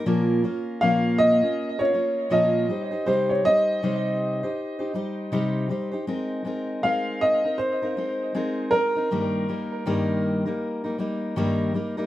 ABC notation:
X:1
M:4/4
L:1/16
Q:"Swing 16ths" 1/4=80
K:Ab
V:1 name="Upright piano"
z4 f2 e3 d3 e4 | c d e8 z6 | z4 f2 e2 c6 B2- | B8- B2 z6 |]
V:2 name="Steel-string acoustic guitar"
[B,,F,B,DFB]2 [B,DFB]2 [B,,F,B,DFB]3 [B,DFB]2 [B,DFB] [B,DFB]2 [B,,F,B,DFB]2 [G,EGc] [EGc] | [C,G,EGc]2 [G,EGc]2 [C,G,EGc]3 [EGc]2 [EGc] [G,EGc]2 [C,G,EGc]2 [G,EGc] [EGc] | [A,CEB]2 [A,CEB]2 [A,CEB]3 [CEB]2 [CEB] [A,CEB]2 [A,CEB]2 [A,CEB] [CEB] | [G,,E,G,B,EB]2 [G,B,EB]2 [G,,E,G,B,EB]3 [G,B,EB]2 [G,B,EB] [G,B,EB]2 [G,,E,G,B,EB]2 [G,B,EB] [G,B,EB] |]